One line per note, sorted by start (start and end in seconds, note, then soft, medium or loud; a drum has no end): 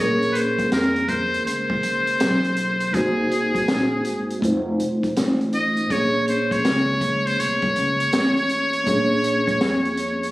0.00 0.68 A#1 medium
0.00 2.88 A#3 medium
0.00 2.89 C#4 medium
0.00 2.90 G#4 medium
0.00 2.91 A#4 medium
0.00 0.34 C#5 loud
0.22 closed hi-hat soft
0.32 0.37 B4 medium
0.32 0.72 C5 medium
0.32 closed hi-hat medium
0.59 kick medium
0.59 closed hi-hat medium
0.72 1.46 F2 medium
0.72 1.10 A#4 medium
0.72 snare medium
0.72 closed hi-hat medium
0.96 closed hi-hat soft
1.08 1.45 C5 medium
1.08 kick medium
1.08 closed hi-hat medium
1.34 closed hi-hat soft
1.46 2.17 C#2 medium
1.46 2.96 C5 medium
1.46 closed hi-hat medium
1.70 kick medium
1.83 closed hi-hat medium
2.07 closed hi-hat soft
2.20 2.91 B1 medium
2.20 snare medium
2.20 closed hi-hat medium
2.44 closed hi-hat soft
2.56 closed hi-hat medium
2.80 closed hi-hat soft
2.91 3.65 C2 loud
2.91 4.38 A#3 medium
2.91 4.39 D#4 medium
2.91 4.40 F#4 medium
2.91 4.42 G#4 medium
2.91 kick loud
2.91 closed hi-hat medium
2.97 4.41 C5 medium
3.31 closed hi-hat medium
3.55 kick medium
3.55 closed hi-hat medium
3.68 4.05 A#1 medium
3.68 snare medium
3.68 closed hi-hat medium
4.05 4.41 G#1 medium
4.05 closed hi-hat medium
4.30 closed hi-hat soft
4.39 4.78 F1 medium
4.39 5.86 A3 medium
4.39 5.87 D#4 medium
4.39 kick medium
4.43 5.88 F4 medium
4.43 5.89 C5 medium
4.43 closed hi-hat medium
4.79 5.15 C2 medium
4.79 closed hi-hat medium
5.03 kick medium
5.03 closed hi-hat soft
5.16 5.87 A1 medium
5.16 snare loud
5.16 closed hi-hat medium
5.41 closed hi-hat soft
5.53 5.93 D#5 loud
5.53 closed hi-hat medium
5.76 closed hi-hat soft
5.87 6.61 A#1 medium
5.87 8.81 A#3 medium
5.87 8.82 C#4 medium
5.87 kick loud
5.87 closed hi-hat medium
5.91 8.83 G#4 medium
5.91 6.28 C#5 loud
5.91 8.84 C#5 medium
6.28 6.54 C5 medium
6.28 closed hi-hat medium
6.51 7.28 C#5 medium
6.51 kick medium
6.51 closed hi-hat medium
6.64 7.35 C#2 medium
6.64 snare medium
6.64 closed hi-hat medium
7.01 kick medium
7.01 closed hi-hat medium
7.26 7.41 C5 medium
7.26 closed hi-hat soft
7.39 7.74 C2 medium
7.39 10.31 C#5 medium
7.39 closed hi-hat medium
7.62 kick loud
7.62 closed hi-hat soft
7.76 8.11 C#2 medium
7.76 closed hi-hat medium
8.00 closed hi-hat soft
8.12 8.83 A1 medium
8.12 snare loud
8.12 closed hi-hat loud
8.37 closed hi-hat soft
8.49 closed hi-hat medium
8.73 closed hi-hat soft
8.83 9.57 A#1 loud
8.83 10.31 A#3 medium
8.83 10.31 C#4 medium
8.83 kick loud
8.83 closed hi-hat medium
8.88 10.31 G#4 medium
8.88 10.31 C#5 medium
9.24 closed hi-hat medium
9.48 kick medium
9.48 closed hi-hat medium
9.61 10.31 F2 medium
9.61 snare loud
9.61 closed hi-hat medium
9.85 closed hi-hat soft
9.97 closed hi-hat medium
10.23 closed hi-hat soft